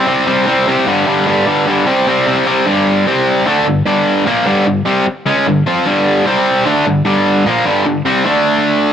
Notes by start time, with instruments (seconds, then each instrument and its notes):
0.06 overdriven electric guitar C3 G3 C4
0.27 overdriven electric guitar C3 G3 C4
0.47 overdriven electric guitar C3 G3 C4
0.67 overdriven electric guitar C3 G3 C4
0.86 overdriven electric guitar G2 D3 G3
1.07 overdriven electric guitar G2 D3 G3
1.27 overdriven electric guitar G2 D3 G3
1.47 overdriven electric guitar G2 D3 G3
1.67 overdriven electric guitar G2 D3 G3
1.86 overdriven electric guitar C3 G3 C4
2.07 overdriven electric guitar C3 G3 C4
2.26 overdriven electric guitar C3 G3 C4
2.46 overdriven electric guitar C3 G3 C4
2.66 overdriven electric guitar G2 D3 G3
3.07 overdriven electric guitar C3 G3 C4
3.46 overdriven electric guitar D3 A3 D4
3.66 overdriven electric guitar G2 D3
3.86 overdriven electric guitar G2 D3 G3
4.26 overdriven electric guitar A#2 F3 A#3
4.46 overdriven electric guitar G2 D3 G3
4.66 overdriven electric guitar G2 D3
4.86 overdriven electric guitar C3 G3 C4
5.06 muted overdriven electric guitar stroke
5.26 overdriven electric guitar C#3 G#3 C#4
5.46 overdriven electric guitar G2 D3
5.66 overdriven electric guitar F3 C4 F4
5.86 overdriven electric guitar G2 D3 G3
6.26 overdriven electric guitar C3 G3 C4
6.66 overdriven electric guitar D3 A3 D4
6.86 overdriven electric guitar G2 D3
7.05 overdriven electric guitar G2 D3 G3
7.46 overdriven electric guitar A#2 F3 A#3
7.65 overdriven electric guitar G2 D3 G3
7.86 overdriven electric guitar G2 D3
8.05 overdriven electric guitar C3 G3 C4
8.25 overdriven electric guitar D3 A3 D4